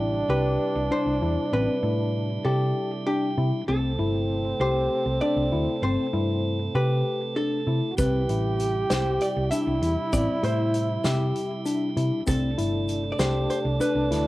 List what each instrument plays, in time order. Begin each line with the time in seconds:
Already playing: picked electric bass A1, tonewheel organ C3 G3 E4, trombone D4, tine electric piano E4, hollow-body jazz guitar G4
0.29 picked electric bass C2, tine electric piano G4, hollow-body jazz guitar B4
0.75 picked electric bass C2
0.91 tine electric piano D4, hollow-body jazz guitar C5
1.06 picked electric bass C2
1.22 picked electric bass E2, tine electric piano E4
1.53 picked electric bass A1, tine electric piano C4, hollow-body jazz guitar B4
1.83 picked electric bass A2, tine electric piano E4
2.45 picked electric bass C3, tine electric piano G4, hollow-body jazz guitar A4
3.06 tine electric piano D4, hollow-body jazz guitar G4
3.38 picked electric bass C3, tine electric piano E4
3.66 picked electric bass C2, tonewheel organ C3 A3 A4, trombone C4, tine electric piano C4, hollow-body jazz guitar A4
3.99 picked electric bass G1, tine electric piano E4
4.60 picked electric bass C2, tine electric piano G4, hollow-body jazz guitar C5
5.06 picked electric bass C2
5.21 tine electric piano D4, hollow-body jazz guitar D5
5.36 picked electric bass C2
5.52 picked electric bass D2, tine electric piano E4
5.82 picked electric bass G1, tine electric piano C4, hollow-body jazz guitar C5
6.13 picked electric bass G2, tine electric piano E4
6.75 picked electric bass C3, tine electric piano G4, hollow-body jazz guitar B4
7.36 tine electric piano D4, hollow-body jazz guitar A4
7.67 picked electric bass C3, tine electric piano E4
7.90 trombone F#4
7.95 picked electric bass C2, tonewheel organ C3 G3 E4, tine electric piano C4, trombone G4, hollow-body jazz guitar B4, kick, closed hi-hat, shaker
8.29 picked electric bass A1, tine electric piano E4, closed hi-hat
8.60 closed hi-hat, shaker
8.90 picked electric bass C2, tine electric piano G4, hollow-body jazz guitar C5, snare, closed hi-hat, shaker
9.21 hollow-body jazz guitar D5, closed hi-hat
9.37 picked electric bass C2
9.50 tine electric piano D4, trombone E4, hollow-body jazz guitar E5, closed hi-hat, shaker
9.67 picked electric bass C2
9.82 picked electric bass E2, tine electric piano E4, closed hi-hat
10.13 picked electric bass A1, tine electric piano C4, hollow-body jazz guitar D5, kick, closed hi-hat, shaker
10.43 picked electric bass A2, tine electric piano E4, hollow-body jazz guitar C5, closed hi-hat
10.74 closed hi-hat, shaker
11.04 picked electric bass C3, tine electric piano G4, hollow-body jazz guitar E5, snare, closed hi-hat, shaker
11.36 closed hi-hat
11.66 tine electric piano D4, closed hi-hat, shaker
11.97 picked electric bass C3, tine electric piano E4, closed hi-hat
12.27 picked electric bass C2, tonewheel organ C3 A3 A4, tine electric piano C4, trombone D4, hollow-body jazz guitar A4, kick, closed hi-hat, shaker
12.58 picked electric bass G1, tine electric piano E4, closed hi-hat
12.88 closed hi-hat, shaker
13.12 hollow-body jazz guitar D5
13.19 picked electric bass C2, tine electric piano G4, hollow-body jazz guitar C5, snare, closed hi-hat, shaker
13.50 hollow-body jazz guitar C5, closed hi-hat
13.65 picked electric bass C2
13.80 tine electric piano D4, hollow-body jazz guitar B4, closed hi-hat, shaker
13.95 picked electric bass C2
14.11 picked electric bass D2, tine electric piano E4, snare, closed hi-hat